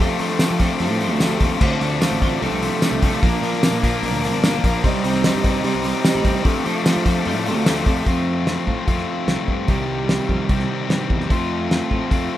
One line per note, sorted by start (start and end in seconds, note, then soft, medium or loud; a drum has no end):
0.00 0.18 F2 loud
0.00 0.18 C3 loud
0.00 0.19 F3 medium
0.00 0.20 A3 loud
0.00 0.21 C4 loud
0.00 0.20 D4 loud
0.00 1.60 A4 medium
0.00 0.21 A4 loud
0.00 0.21 C5 loud
0.00 2.40 F5 medium
0.00 8.03 D6 medium
0.19 0.38 F2 medium
0.19 0.38 C3 medium
0.19 0.40 F3 medium
0.19 0.36 F3 medium
0.19 0.41 A3 medium
0.19 0.41 C4 medium
0.19 0.41 D4 medium
0.19 0.42 A4 medium
0.19 0.42 C5 medium
0.19 open hi-hat medium
0.29 snare soft
0.39 0.58 F2 medium
0.39 0.58 C3 medium
0.39 0.59 F3 medium
0.39 0.60 A3 medium
0.39 0.60 C4 medium
0.39 0.61 D4 medium
0.39 0.61 A4 medium
0.39 0.62 C5 medium
0.39 snare loud
0.39 open hi-hat medium
0.39 tambourine loud
0.51 0.67 F3 medium
0.59 0.78 F2 loud
0.59 0.79 C3 medium
0.59 0.79 F3 medium
0.59 0.79 A3 loud
0.59 0.80 C4 loud
0.59 0.80 D4 loud
0.59 0.80 A4 loud
0.59 0.80 C5 loud
0.59 kick medium
0.59 open hi-hat medium
0.80 0.99 F2 medium
0.80 0.90 F2 loud
0.80 1.00 C3 medium
0.80 1.00 F3 medium
0.80 1.00 A3 medium
0.80 1.01 C4 medium
0.80 1.01 D4 medium
0.80 1.01 A4 loud
0.80 1.01 C5 loud
0.80 open hi-hat medium
0.90 1.11 A2 medium
1.00 1.19 F2 medium
1.00 1.20 C3 medium
1.00 1.20 F3 medium
1.00 1.19 A3 medium
1.00 1.20 C4 medium
1.00 1.21 D4 medium
1.00 1.21 A4 medium
1.00 1.21 C5 medium
1.00 open hi-hat medium
1.11 1.36 D2 medium
1.20 1.40 F2 loud
1.20 1.41 C3 loud
1.20 1.39 F3 loud
1.20 1.39 A3 loud
1.20 1.42 C4 loud
1.20 1.40 D4 loud
1.20 1.40 A4 loud
1.20 1.40 C5 medium
1.20 snare loud
1.20 open hi-hat medium
1.20 tambourine medium
1.39 1.49 D#2 loud
1.39 1.60 F2 loud
1.39 1.60 C3 medium
1.39 1.59 F3 medium
1.39 1.59 A3 medium
1.39 1.61 C4 medium
1.39 1.60 D4 medium
1.39 1.60 A4 medium
1.39 1.60 C5 medium
1.39 kick loud
1.39 open hi-hat medium
1.59 1.69 D2 medium
1.59 1.78 D3 loud
1.59 1.81 F3 loud
1.59 1.79 A3 medium
1.59 1.80 C4 medium
1.59 1.82 D4 medium
1.59 1.81 F4 loud
1.59 1.81 C5 loud
1.59 2.42 C5 medium
1.59 kick loud
1.59 crash loud
1.80 2.06 D2 medium
1.80 2.00 D3 medium
1.80 2.01 F3 medium
1.80 2.00 A3 medium
1.80 2.00 C4 medium
1.80 2.02 D4 medium
1.80 2.02 F4 medium
1.80 2.02 C5 medium
1.80 open hi-hat medium
2.01 2.20 D3 medium
2.01 2.22 F3 medium
2.01 2.20 A3 medium
2.01 2.21 C4 medium
2.01 2.22 D4 medium
2.01 2.22 F4 medium
2.01 2.22 C5 medium
2.01 snare loud
2.01 open hi-hat medium
2.01 tambourine loud
2.11 2.36 A1 medium
2.21 2.40 D3 loud
2.21 2.41 F3 loud
2.21 2.41 A3 loud
2.21 2.41 C4 loud
2.21 2.42 D4 loud
2.21 2.42 F4 loud
2.21 2.41 C5 loud
2.21 kick medium
2.21 open hi-hat medium
2.41 2.50 C2 medium
2.41 2.60 C3 loud
2.41 2.60 F3 loud
2.41 2.61 A3 loud
2.41 2.61 C4 loud
2.41 2.62 D4 loud
2.41 3.22 A4 medium
2.41 2.62 A4 loud
2.41 4.81 F5 medium
2.41 open hi-hat medium
2.51 2.68 C2 medium
2.61 2.80 C3 medium
2.61 2.81 F3 medium
2.61 2.82 A3 medium
2.61 2.81 C4 medium
2.61 2.83 D4 medium
2.61 2.82 A4 medium
2.61 open hi-hat medium
2.81 3.00 C3 medium
2.81 3.01 F3 loud
2.81 3.01 A3 loud
2.81 3.01 C4 loud
2.81 3.02 D4 loud
2.81 3.02 A4 loud
2.81 snare medium
2.81 open hi-hat medium
2.81 tambourine loud
2.92 3.08 C2 medium
3.01 3.21 C3 medium
3.01 3.21 F3 loud
3.01 3.21 A3 loud
3.01 3.21 C4 loud
3.01 3.23 D4 medium
3.01 3.22 A4 loud
3.01 kick loud
3.01 open hi-hat medium
3.21 3.31 A#1 loud
3.21 3.40 A#2 medium
3.21 3.41 F3 loud
3.21 3.42 A#3 loud
3.21 3.43 D4 loud
3.21 3.43 F4 loud
3.21 4.83 A#4 medium
3.21 3.43 A#4 loud
3.21 kick loud
3.21 open hi-hat medium
3.41 3.58 A#2 medium
3.41 3.61 A#2 medium
3.41 3.62 F3 loud
3.41 3.62 A#3 medium
3.41 3.63 D4 medium
3.41 3.63 F4 loud
3.41 3.63 A#4 loud
3.41 open hi-hat medium
3.54 snare soft
3.62 3.81 A#2 medium
3.62 3.82 F3 medium
3.62 3.83 A#3 medium
3.62 3.84 D4 medium
3.62 3.84 F4 medium
3.62 3.84 A#4 medium
3.62 snare loud
3.62 open hi-hat medium
3.62 tambourine loud
3.72 3.89 A#2 medium
3.82 4.02 A#2 loud
3.82 4.02 F3 loud
3.82 4.03 A#3 loud
3.82 4.04 D4 medium
3.82 4.03 F4 loud
3.82 4.04 A#4 loud
3.82 kick medium
3.82 open hi-hat medium
4.03 4.14 A#1 loud
4.03 4.21 A#2 medium
4.03 4.22 F3 loud
4.03 4.23 A#3 medium
4.03 4.24 D4 medium
4.03 4.24 F4 medium
4.03 4.24 A#4 loud
4.03 open hi-hat medium
4.14 4.34 D2 medium
4.23 4.42 A#2 medium
4.23 4.42 F3 medium
4.23 4.43 A#3 medium
4.23 4.44 D4 medium
4.23 4.44 F4 medium
4.23 4.44 A#4 medium
4.23 open hi-hat medium
4.34 4.59 G1 medium
4.43 4.62 A#2 loud
4.43 4.63 F3 medium
4.43 4.63 A#3 loud
4.43 4.64 D4 loud
4.43 4.64 F4 loud
4.43 4.64 A#4 loud
4.43 snare loud
4.43 open hi-hat medium
4.43 tambourine medium
4.63 4.72 A#1 loud
4.63 4.82 A#2 medium
4.63 4.83 F3 medium
4.63 4.83 A#3 medium
4.63 4.84 D4 medium
4.63 4.83 F4 medium
4.63 4.84 A#4 loud
4.63 kick medium
4.63 open hi-hat medium
4.83 4.92 C2 loud
4.83 5.02 C3 medium
4.83 5.03 G3 loud
4.83 5.04 C4 loud
4.83 5.04 D#4 loud
4.83 5.04 G4 loud
4.83 6.43 C5 medium
4.83 5.06 D5 loud
4.83 6.43 D#5 medium
4.83 kick loud
4.83 open hi-hat medium
5.04 5.29 C2 medium
5.04 5.22 C3 medium
5.04 5.23 G3 medium
5.04 5.25 C4 loud
5.04 5.25 D#4 medium
5.04 5.25 G4 loud
5.04 5.26 D5 medium
5.04 open hi-hat medium
5.14 snare soft
5.24 5.42 C3 medium
5.24 5.43 G3 medium
5.24 5.44 C4 medium
5.24 5.44 D#4 medium
5.24 5.44 G4 medium
5.24 5.46 D5 medium
5.24 snare loud
5.24 open hi-hat medium
5.24 tambourine loud
5.35 5.59 G2 medium
5.43 5.62 C3 loud
5.43 5.63 G3 medium
5.43 5.64 C4 loud
5.43 5.64 D#4 loud
5.43 5.64 G4 loud
5.43 5.64 D5 loud
5.43 kick medium
5.43 open hi-hat medium
5.63 5.82 C3 medium
5.63 5.72 C3 loud
5.63 5.83 G3 loud
5.63 5.84 C4 medium
5.63 5.84 D#4 medium
5.63 5.84 G4 loud
5.63 5.85 D5 loud
5.63 open hi-hat medium
5.75 5.91 C2 medium
5.84 6.02 C3 medium
5.84 6.02 G3 medium
5.84 6.04 C4 medium
5.84 6.04 D#4 medium
5.84 6.04 G4 medium
5.84 6.05 D5 medium
5.84 open hi-hat medium
6.03 6.21 C3 loud
6.03 6.22 G3 medium
6.03 6.23 C4 medium
6.03 6.23 D#4 loud
6.03 6.23 G4 loud
6.03 6.24 D5 loud
6.03 snare loud
6.03 open hi-hat medium
6.03 tambourine loud
6.15 6.31 A1 medium
6.22 6.43 C3 medium
6.22 6.43 G3 medium
6.22 6.43 C4 medium
6.22 6.43 D#4 medium
6.22 6.44 G4 loud
6.22 6.44 D5 medium
6.22 kick medium
6.22 open hi-hat medium
6.43 6.63 F2 medium
6.43 6.53 F2 loud
6.43 6.64 C3 loud
6.43 6.63 F3 loud
6.43 6.63 A3 loud
6.43 6.65 C4 loud
6.43 6.64 D4 loud
6.43 6.64 A4 loud
6.43 8.05 A4 medium
6.43 6.65 C5 loud
6.43 8.05 F5 medium
6.43 kick loud
6.43 open hi-hat medium
6.64 6.84 F2 medium
6.64 6.84 C3 medium
6.64 6.83 F3 medium
6.64 6.82 F3 medium
6.64 6.84 A3 medium
6.64 6.85 C4 medium
6.64 6.84 D4 loud
6.64 6.85 A4 loud
6.64 6.85 C5 medium
6.64 open hi-hat medium
6.84 7.04 F2 medium
6.84 7.04 C3 medium
6.84 7.03 F3 medium
6.84 7.03 A3 medium
6.84 7.05 C4 medium
6.84 7.04 D4 medium
6.84 7.05 A4 medium
6.84 7.05 C5 medium
6.84 snare loud
6.84 open hi-hat medium
6.84 tambourine loud
6.97 7.13 F3 medium
7.04 7.25 F2 loud
7.04 7.25 C3 loud
7.04 7.24 F3 medium
7.04 7.25 A3 medium
7.04 7.26 C4 loud
7.04 7.25 D4 loud
7.04 7.25 A4 loud
7.04 7.26 C5 loud
7.04 kick medium
7.04 open hi-hat medium
7.25 7.45 F2 medium
7.25 7.35 F2 medium
7.25 7.46 C3 medium
7.25 7.45 F3 medium
7.25 7.46 A3 medium
7.25 7.47 C4 medium
7.25 7.46 D4 medium
7.25 7.47 A4 loud
7.25 7.47 C5 loud
7.25 open hi-hat medium
7.35 7.55 A2 medium
7.46 7.65 F2 medium
7.46 7.66 C3 medium
7.46 7.64 F3 medium
7.46 7.65 A3 medium
7.46 7.66 C4 medium
7.46 7.66 D4 medium
7.46 7.67 A4 medium
7.46 7.67 C5 loud
7.46 open hi-hat medium
7.55 7.64 D2 medium
7.66 7.84 D2 medium
7.66 7.85 F2 loud
7.66 7.85 C3 loud
7.66 7.85 F3 loud
7.66 7.86 A3 medium
7.66 7.86 C4 loud
7.66 7.86 D4 loud
7.66 7.87 A4 loud
7.66 7.87 C5 loud
7.66 snare loud
7.66 open hi-hat medium
7.66 tambourine loud
7.86 8.05 F2 medium
7.86 8.05 C3 medium
7.86 8.04 F3 medium
7.86 8.06 A3 medium
7.86 8.06 C4 medium
7.86 8.06 D4 medium
7.86 8.06 A4 medium
7.86 8.06 C5 medium
7.86 kick loud
7.86 open hi-hat medium
8.05 8.56 F2 medium
8.05 8.65 F3 medium
8.05 8.66 A3 medium
8.05 8.68 C4 medium
8.05 8.65 F4 medium
8.05 kick medium
8.05 open hi-hat medium
8.47 snare loud
8.47 open hi-hat medium
8.67 8.75 A2 medium
8.67 9.68 A3 medium
8.67 9.70 C4 medium
8.67 9.67 F4 medium
8.67 kick medium
8.71 9.68 F3 medium
8.87 9.04 F2 medium
8.87 9.67 F3 medium
8.87 9.68 A3 medium
8.87 9.70 C4 medium
8.87 9.68 F4 medium
8.87 kick loud
8.87 open hi-hat medium
8.98 snare soft
9.27 9.36 C2 medium
9.27 snare medium
9.27 open hi-hat soft
9.48 9.65 G2 medium
9.48 kick medium
9.67 10.18 C2 medium
9.67 10.27 C3 medium
9.67 10.28 D#3 medium
9.67 10.28 G3 medium
9.67 10.29 C4 medium
9.67 10.27 G4 medium
9.67 kick loud
9.67 open hi-hat soft
10.09 snare medium
10.09 open hi-hat soft
10.28 10.37 F2 medium
10.28 11.28 D#3 medium
10.28 11.29 G3 medium
10.28 11.30 C4 medium
10.28 11.29 G4 medium
10.28 kick medium
10.32 11.31 C3 medium
10.49 10.66 C2 medium
10.49 11.29 C3 medium
10.49 11.29 D#3 medium
10.49 11.30 G3 medium
10.49 11.32 C4 medium
10.49 11.31 G4 medium
10.49 kick loud
10.49 open hi-hat medium
10.60 snare soft
10.89 10.98 G2 medium
10.89 snare medium
10.89 open hi-hat soft
11.10 11.27 E2 medium
11.10 kick medium
11.21 snare soft
11.29 11.80 F2 medium
11.29 11.89 F3 medium
11.29 11.90 A3 medium
11.29 11.90 C4 medium
11.29 11.88 F4 medium
11.29 kick loud
11.29 open hi-hat medium
11.71 snare loud
11.71 open hi-hat soft
11.89 11.99 A2 medium
11.89 12.38 F3 medium
11.89 12.38 A3 medium
11.89 12.38 C4 medium
11.89 12.38 F4 medium
11.89 kick medium
12.11 12.28 F2 medium
12.11 12.38 F3 medium
12.11 12.38 A3 medium
12.11 12.38 C4 medium
12.11 12.38 F4 medium
12.11 kick loud
12.11 open hi-hat medium